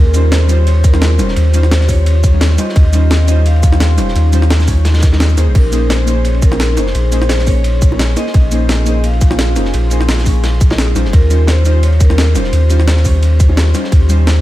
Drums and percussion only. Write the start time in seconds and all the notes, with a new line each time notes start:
0.14 closed hi-hat, ride, shaker
0.32 snare, closed hi-hat, ride
0.41 ride
0.49 closed hi-hat, ride, shaker
0.67 closed hi-hat, ride
0.75 ride
0.84 kick, closed hi-hat, ride, shaker
0.94 snare
1.02 snare, closed hi-hat, ride
1.11 ride
1.19 snare, closed hi-hat, ride, shaker
1.28 snare
1.36 closed hi-hat, ride
1.54 closed hi-hat, ride, shaker
1.63 snare
1.71 snare, closed hi-hat, ride
1.81 snare
1.89 kick, open hi-hat, ride, shaker
2.06 closed hi-hat, ride
2.24 kick, closed hi-hat, ride, shaker
2.41 snare, closed hi-hat, ride
2.50 snare
2.58 snare, closed hi-hat, ride, shaker
2.69 snare
2.76 kick, closed hi-hat, ride
2.93 closed hi-hat, ride, shaker
3.11 snare, closed hi-hat, ride
3.21 ride
3.28 closed hi-hat, ride, shaker
3.46 closed hi-hat, ride
3.56 ride
3.63 kick, closed hi-hat, ride, shaker
3.72 snare
3.80 snare, closed hi-hat, ride
3.91 ride
3.98 snare, closed hi-hat, ride, shaker
4.08 snare
4.16 closed hi-hat, ride
4.33 closed hi-hat, ride, shaker
4.42 snare
4.50 snare, closed hi-hat, ride
4.60 snare, shaker
4.68 kick, open hi-hat, ride, shaker
4.85 snare, closed hi-hat, ride
4.94 snare, ride, shaker
4.98 snare, ride
5.03 kick, snare, closed hi-hat, ride, shaker
5.13 snare, ride
5.20 snare, closed hi-hat, ride
5.29 ride, shaker
5.38 snare, closed hi-hat, ride, shaker
5.55 kick, closed hi-hat, crash, ride
5.73 closed hi-hat, ride, shaker
5.90 snare, closed hi-hat, ride
6.00 ride
6.08 closed hi-hat, ride, shaker
6.24 closed hi-hat, ride
6.34 ride
6.42 kick, closed hi-hat, ride, shaker
6.51 snare, high bongo
6.60 snare, closed hi-hat, ride
6.70 ride
6.77 snare, closed hi-hat, ride, shaker
6.87 snare
6.95 closed hi-hat, ride
7.12 closed hi-hat, ride, shaker
7.22 snare
7.29 snare, closed hi-hat, ride
7.39 snare
7.47 kick, open hi-hat, ride, shaker
7.64 closed hi-hat, ride
7.82 kick, closed hi-hat, ride, shaker
7.92 high bongo
7.99 snare, closed hi-hat, ride
8.09 snare
8.17 snare, closed hi-hat, ride, shaker
8.27 snare
8.34 kick, closed hi-hat, ride
8.52 closed hi-hat, ride, shaker
8.69 snare, closed hi-hat, ride
8.79 ride
8.86 closed hi-hat, ride, shaker
9.04 closed hi-hat, ride
9.13 ride
9.21 kick, closed hi-hat, ride, shaker
9.31 snare, high bongo
9.38 snare, closed hi-hat, ride
9.48 ride
9.56 snare, closed hi-hat, ride, shaker
9.65 snare
9.74 closed hi-hat, ride
9.90 closed hi-hat, ride, shaker
10.01 snare
10.09 snare, closed hi-hat, ride
10.18 snare
10.26 kick, open hi-hat, ride, shaker
10.44 snare, closed hi-hat, ride
10.53 snare
10.60 kick, closed hi-hat, ride, shaker
10.70 snare, ride, high bongo
10.78 snare, closed hi-hat, ride
10.88 ride
10.96 snare, closed hi-hat, ride, shaker
11.05 snare
11.13 kick, closed hi-hat, ride
11.30 closed hi-hat, ride, shaker
11.47 snare, closed hi-hat, ride
11.58 ride
11.65 closed hi-hat, ride, shaker
11.83 closed hi-hat, ride
11.93 ride
12.00 kick, closed hi-hat, ride, shaker
12.10 snare, high bongo
12.18 snare, closed hi-hat, ride
12.28 ride
12.35 snare, closed hi-hat, ride, shaker
12.44 snare
12.53 closed hi-hat, ride
12.69 closed hi-hat, ride, shaker
12.80 snare
12.88 snare, closed hi-hat, ride
12.97 snare
13.05 kick, open hi-hat, ride, shaker
13.23 closed hi-hat, ride
13.40 kick, closed hi-hat, ride, shaker
13.49 high bongo
13.57 snare, closed hi-hat, ride
13.67 snare
13.75 snare, closed hi-hat, ride, shaker
13.84 snare
13.92 kick, closed hi-hat, ride
14.10 closed hi-hat, ride, shaker
14.27 snare, closed hi-hat, ride
14.37 ride